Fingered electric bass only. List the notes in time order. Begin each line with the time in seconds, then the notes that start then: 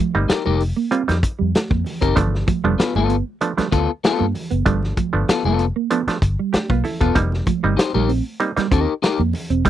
0.15 G1
0.47 F1
1.09 F2
1.41 F2
1.71 F2
2.02 F#1
2.17 G1
2.64 F1
2.79 muted fingered electric bass stroke
2.95 G1
3.59 muted fingered electric bass stroke
3.73 D2
4.21 G2
4.52 F#1
5.14 G1
5.45 F1
6.07 muted fingered electric bass stroke
6.22 G1
6.54 muted fingered electric bass stroke
6.70 B1
7.01 E1
7.16 F1
7.64 G1
7.78 muted fingered electric bass stroke
7.95 A#1
8.57 muted fingered electric bass stroke
8.72 D#2
9.20 F2
9.50 E1
9.66 F1